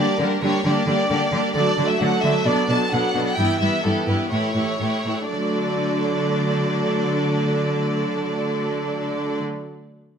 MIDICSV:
0, 0, Header, 1, 5, 480
1, 0, Start_track
1, 0, Key_signature, 2, "major"
1, 0, Tempo, 451128
1, 1644, Time_signature, 4, 2, 24, 8
1, 2610, Tempo, 464396
1, 4530, Tempo, 494641
1, 10230, End_track
2, 0, Start_track
2, 0, Title_t, "Violin section"
2, 0, Program_c, 0, 48
2, 0, Note_on_c, 0, 74, 54
2, 209, Note_off_c, 0, 74, 0
2, 218, Note_on_c, 0, 70, 51
2, 453, Note_off_c, 0, 70, 0
2, 460, Note_on_c, 0, 73, 55
2, 689, Note_off_c, 0, 73, 0
2, 689, Note_on_c, 0, 74, 52
2, 1623, Note_off_c, 0, 74, 0
2, 1636, Note_on_c, 0, 74, 54
2, 1994, Note_off_c, 0, 74, 0
2, 2008, Note_on_c, 0, 76, 45
2, 2127, Note_off_c, 0, 76, 0
2, 2129, Note_on_c, 0, 78, 59
2, 2368, Note_on_c, 0, 76, 55
2, 2369, Note_off_c, 0, 78, 0
2, 2611, Note_off_c, 0, 76, 0
2, 2611, Note_on_c, 0, 74, 55
2, 2848, Note_off_c, 0, 74, 0
2, 2856, Note_on_c, 0, 81, 54
2, 3079, Note_on_c, 0, 78, 56
2, 3090, Note_off_c, 0, 81, 0
2, 3435, Note_off_c, 0, 78, 0
2, 3447, Note_on_c, 0, 78, 45
2, 3555, Note_on_c, 0, 79, 56
2, 3561, Note_off_c, 0, 78, 0
2, 3793, Note_off_c, 0, 79, 0
2, 3793, Note_on_c, 0, 76, 50
2, 4033, Note_off_c, 0, 76, 0
2, 4033, Note_on_c, 0, 69, 48
2, 4280, Note_off_c, 0, 69, 0
2, 4282, Note_on_c, 0, 71, 40
2, 4517, Note_on_c, 0, 73, 45
2, 4529, Note_off_c, 0, 71, 0
2, 5465, Note_off_c, 0, 73, 0
2, 5484, Note_on_c, 0, 74, 37
2, 9484, Note_off_c, 0, 74, 0
2, 10230, End_track
3, 0, Start_track
3, 0, Title_t, "Violin section"
3, 0, Program_c, 1, 48
3, 0, Note_on_c, 1, 62, 36
3, 0, Note_on_c, 1, 67, 37
3, 207, Note_off_c, 1, 62, 0
3, 209, Note_off_c, 1, 67, 0
3, 221, Note_on_c, 1, 62, 34
3, 223, Note_on_c, 1, 67, 37
3, 450, Note_off_c, 1, 62, 0
3, 451, Note_off_c, 1, 67, 0
3, 464, Note_on_c, 1, 62, 39
3, 468, Note_on_c, 1, 67, 36
3, 685, Note_off_c, 1, 67, 0
3, 686, Note_off_c, 1, 62, 0
3, 698, Note_on_c, 1, 62, 38
3, 698, Note_on_c, 1, 67, 41
3, 924, Note_off_c, 1, 62, 0
3, 924, Note_off_c, 1, 67, 0
3, 936, Note_on_c, 1, 67, 33
3, 937, Note_on_c, 1, 62, 36
3, 1154, Note_off_c, 1, 62, 0
3, 1154, Note_off_c, 1, 67, 0
3, 1166, Note_on_c, 1, 67, 38
3, 1167, Note_on_c, 1, 62, 37
3, 1400, Note_off_c, 1, 62, 0
3, 1400, Note_off_c, 1, 67, 0
3, 1415, Note_on_c, 1, 62, 37
3, 1419, Note_on_c, 1, 67, 34
3, 1644, Note_off_c, 1, 62, 0
3, 1647, Note_off_c, 1, 67, 0
3, 1655, Note_on_c, 1, 69, 39
3, 1659, Note_on_c, 1, 62, 39
3, 1879, Note_off_c, 1, 62, 0
3, 1880, Note_off_c, 1, 69, 0
3, 1892, Note_on_c, 1, 62, 36
3, 1893, Note_on_c, 1, 69, 36
3, 2118, Note_off_c, 1, 62, 0
3, 2119, Note_off_c, 1, 69, 0
3, 2131, Note_on_c, 1, 62, 35
3, 2132, Note_on_c, 1, 69, 35
3, 2356, Note_off_c, 1, 62, 0
3, 2359, Note_off_c, 1, 69, 0
3, 2369, Note_on_c, 1, 62, 36
3, 2372, Note_on_c, 1, 69, 37
3, 2606, Note_off_c, 1, 62, 0
3, 2608, Note_off_c, 1, 69, 0
3, 2622, Note_on_c, 1, 62, 41
3, 2625, Note_on_c, 1, 69, 37
3, 2839, Note_off_c, 1, 69, 0
3, 2841, Note_off_c, 1, 62, 0
3, 2851, Note_on_c, 1, 69, 33
3, 2853, Note_on_c, 1, 62, 34
3, 3072, Note_off_c, 1, 62, 0
3, 3075, Note_off_c, 1, 69, 0
3, 3084, Note_on_c, 1, 62, 33
3, 3087, Note_on_c, 1, 69, 36
3, 3314, Note_off_c, 1, 69, 0
3, 3318, Note_off_c, 1, 62, 0
3, 3326, Note_on_c, 1, 69, 31
3, 3331, Note_on_c, 1, 62, 34
3, 3558, Note_off_c, 1, 69, 0
3, 3560, Note_off_c, 1, 62, 0
3, 3562, Note_on_c, 1, 64, 35
3, 3564, Note_on_c, 1, 67, 35
3, 3791, Note_off_c, 1, 67, 0
3, 3796, Note_off_c, 1, 64, 0
3, 3803, Note_on_c, 1, 67, 31
3, 3808, Note_on_c, 1, 64, 30
3, 4034, Note_off_c, 1, 64, 0
3, 4036, Note_off_c, 1, 67, 0
3, 4047, Note_on_c, 1, 64, 31
3, 4048, Note_on_c, 1, 67, 32
3, 4276, Note_off_c, 1, 64, 0
3, 4276, Note_off_c, 1, 67, 0
3, 4288, Note_on_c, 1, 64, 29
3, 4289, Note_on_c, 1, 67, 31
3, 4517, Note_off_c, 1, 67, 0
3, 4523, Note_off_c, 1, 64, 0
3, 4530, Note_on_c, 1, 67, 32
3, 4535, Note_on_c, 1, 64, 33
3, 4756, Note_off_c, 1, 64, 0
3, 4759, Note_off_c, 1, 67, 0
3, 4768, Note_on_c, 1, 64, 27
3, 4770, Note_on_c, 1, 67, 26
3, 4993, Note_off_c, 1, 67, 0
3, 4996, Note_off_c, 1, 64, 0
3, 5005, Note_on_c, 1, 67, 27
3, 5008, Note_on_c, 1, 64, 26
3, 5236, Note_off_c, 1, 67, 0
3, 5240, Note_off_c, 1, 64, 0
3, 5247, Note_on_c, 1, 67, 25
3, 5252, Note_on_c, 1, 64, 24
3, 5486, Note_off_c, 1, 67, 0
3, 5486, Note_on_c, 1, 69, 29
3, 5489, Note_off_c, 1, 64, 0
3, 5489, Note_on_c, 1, 62, 29
3, 9487, Note_off_c, 1, 69, 0
3, 9489, Note_off_c, 1, 62, 0
3, 10230, End_track
4, 0, Start_track
4, 0, Title_t, "Viola section"
4, 0, Program_c, 2, 48
4, 0, Note_on_c, 2, 55, 34
4, 0, Note_on_c, 2, 58, 35
4, 203, Note_off_c, 2, 58, 0
4, 204, Note_off_c, 2, 55, 0
4, 216, Note_on_c, 2, 58, 36
4, 217, Note_on_c, 2, 55, 37
4, 439, Note_off_c, 2, 55, 0
4, 439, Note_off_c, 2, 58, 0
4, 452, Note_on_c, 2, 55, 35
4, 452, Note_on_c, 2, 58, 34
4, 684, Note_off_c, 2, 55, 0
4, 685, Note_off_c, 2, 58, 0
4, 697, Note_on_c, 2, 58, 40
4, 701, Note_on_c, 2, 55, 40
4, 925, Note_off_c, 2, 55, 0
4, 927, Note_off_c, 2, 58, 0
4, 937, Note_on_c, 2, 55, 35
4, 941, Note_on_c, 2, 58, 36
4, 1164, Note_off_c, 2, 58, 0
4, 1166, Note_off_c, 2, 55, 0
4, 1177, Note_on_c, 2, 55, 37
4, 1177, Note_on_c, 2, 58, 35
4, 1398, Note_off_c, 2, 55, 0
4, 1403, Note_off_c, 2, 58, 0
4, 1410, Note_on_c, 2, 55, 36
4, 1415, Note_on_c, 2, 58, 36
4, 1642, Note_off_c, 2, 55, 0
4, 1645, Note_off_c, 2, 58, 0
4, 1657, Note_on_c, 2, 57, 39
4, 1662, Note_on_c, 2, 54, 39
4, 1877, Note_off_c, 2, 57, 0
4, 1879, Note_off_c, 2, 54, 0
4, 1890, Note_on_c, 2, 57, 36
4, 1891, Note_on_c, 2, 54, 35
4, 2113, Note_off_c, 2, 57, 0
4, 2114, Note_off_c, 2, 54, 0
4, 2126, Note_on_c, 2, 57, 37
4, 2127, Note_on_c, 2, 54, 37
4, 2363, Note_off_c, 2, 54, 0
4, 2363, Note_off_c, 2, 57, 0
4, 2374, Note_on_c, 2, 54, 34
4, 2380, Note_on_c, 2, 57, 33
4, 2609, Note_off_c, 2, 54, 0
4, 2612, Note_off_c, 2, 57, 0
4, 2620, Note_on_c, 2, 54, 39
4, 2621, Note_on_c, 2, 59, 40
4, 2843, Note_off_c, 2, 59, 0
4, 2845, Note_off_c, 2, 54, 0
4, 2855, Note_on_c, 2, 59, 33
4, 2858, Note_on_c, 2, 54, 35
4, 3085, Note_off_c, 2, 59, 0
4, 3086, Note_off_c, 2, 54, 0
4, 3099, Note_on_c, 2, 59, 34
4, 3100, Note_on_c, 2, 54, 36
4, 3326, Note_off_c, 2, 59, 0
4, 3327, Note_off_c, 2, 54, 0
4, 3347, Note_on_c, 2, 54, 32
4, 3347, Note_on_c, 2, 59, 32
4, 3566, Note_off_c, 2, 59, 0
4, 3569, Note_off_c, 2, 54, 0
4, 3575, Note_on_c, 2, 52, 36
4, 3578, Note_on_c, 2, 59, 36
4, 3800, Note_off_c, 2, 59, 0
4, 3803, Note_off_c, 2, 52, 0
4, 3812, Note_on_c, 2, 59, 30
4, 3816, Note_on_c, 2, 52, 32
4, 4043, Note_off_c, 2, 59, 0
4, 4045, Note_off_c, 2, 52, 0
4, 4056, Note_on_c, 2, 59, 32
4, 4057, Note_on_c, 2, 52, 31
4, 4287, Note_off_c, 2, 52, 0
4, 4287, Note_off_c, 2, 59, 0
4, 4299, Note_on_c, 2, 59, 29
4, 4300, Note_on_c, 2, 52, 29
4, 4523, Note_off_c, 2, 52, 0
4, 4532, Note_off_c, 2, 59, 0
4, 4535, Note_on_c, 2, 52, 33
4, 4535, Note_on_c, 2, 57, 33
4, 4754, Note_off_c, 2, 52, 0
4, 4759, Note_off_c, 2, 57, 0
4, 4766, Note_on_c, 2, 52, 28
4, 4771, Note_on_c, 2, 57, 26
4, 4995, Note_off_c, 2, 52, 0
4, 4995, Note_off_c, 2, 57, 0
4, 5007, Note_on_c, 2, 52, 25
4, 5007, Note_on_c, 2, 57, 26
4, 5244, Note_off_c, 2, 52, 0
4, 5244, Note_off_c, 2, 57, 0
4, 5255, Note_on_c, 2, 52, 24
4, 5258, Note_on_c, 2, 57, 23
4, 5474, Note_off_c, 2, 57, 0
4, 5485, Note_on_c, 2, 54, 30
4, 5486, Note_on_c, 2, 57, 31
4, 5490, Note_off_c, 2, 52, 0
4, 9485, Note_off_c, 2, 54, 0
4, 9486, Note_off_c, 2, 57, 0
4, 10230, End_track
5, 0, Start_track
5, 0, Title_t, "Cello section"
5, 0, Program_c, 3, 48
5, 206, Note_on_c, 3, 50, 41
5, 291, Note_off_c, 3, 50, 0
5, 448, Note_on_c, 3, 50, 42
5, 533, Note_off_c, 3, 50, 0
5, 691, Note_on_c, 3, 50, 39
5, 777, Note_off_c, 3, 50, 0
5, 929, Note_on_c, 3, 50, 39
5, 1014, Note_off_c, 3, 50, 0
5, 1173, Note_on_c, 3, 50, 39
5, 1258, Note_off_c, 3, 50, 0
5, 1413, Note_on_c, 3, 50, 41
5, 1499, Note_off_c, 3, 50, 0
5, 1653, Note_on_c, 3, 50, 45
5, 1738, Note_off_c, 3, 50, 0
5, 1893, Note_on_c, 3, 50, 39
5, 1979, Note_off_c, 3, 50, 0
5, 2135, Note_on_c, 3, 50, 44
5, 2220, Note_off_c, 3, 50, 0
5, 2381, Note_on_c, 3, 50, 41
5, 2466, Note_off_c, 3, 50, 0
5, 2616, Note_on_c, 3, 47, 37
5, 2699, Note_off_c, 3, 47, 0
5, 2853, Note_on_c, 3, 47, 37
5, 2935, Note_off_c, 3, 47, 0
5, 3090, Note_on_c, 3, 47, 36
5, 3173, Note_off_c, 3, 47, 0
5, 3329, Note_on_c, 3, 47, 36
5, 3411, Note_off_c, 3, 47, 0
5, 3564, Note_on_c, 3, 43, 43
5, 3647, Note_off_c, 3, 43, 0
5, 3808, Note_on_c, 3, 43, 34
5, 3890, Note_off_c, 3, 43, 0
5, 4050, Note_on_c, 3, 43, 36
5, 4132, Note_off_c, 3, 43, 0
5, 4288, Note_on_c, 3, 43, 35
5, 4371, Note_off_c, 3, 43, 0
5, 4530, Note_on_c, 3, 45, 30
5, 4608, Note_off_c, 3, 45, 0
5, 4764, Note_on_c, 3, 45, 29
5, 4841, Note_off_c, 3, 45, 0
5, 5003, Note_on_c, 3, 45, 29
5, 5081, Note_off_c, 3, 45, 0
5, 5252, Note_on_c, 3, 45, 28
5, 5329, Note_off_c, 3, 45, 0
5, 5495, Note_on_c, 3, 50, 31
5, 9495, Note_off_c, 3, 50, 0
5, 10230, End_track
0, 0, End_of_file